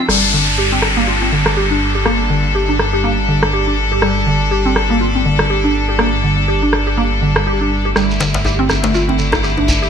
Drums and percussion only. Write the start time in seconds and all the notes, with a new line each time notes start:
0.09 cross-stick, crash
0.82 cross-stick
1.46 cross-stick
2.06 cross-stick
2.79 cross-stick
3.43 cross-stick
4.02 cross-stick
4.76 cross-stick
5.39 cross-stick
5.99 cross-stick
6.73 cross-stick
7.36 cross-stick
7.96 cross-stick, shekere
8.10 shekere
8.20 djembe slap, djembe tone, shekere
8.34 djembe slap, shekere
8.45 djembe tone, shekere
8.69 cross-stick, djembe tone, shekere
8.84 djembe slap, shekere
8.94 shekere
9.09 djembe tone
9.19 shekere
9.32 cross-stick, djembe tone, djembe bass, shekere
9.44 shekere
9.58 djembe tone
9.68 djembe bass, shekere
9.83 shekere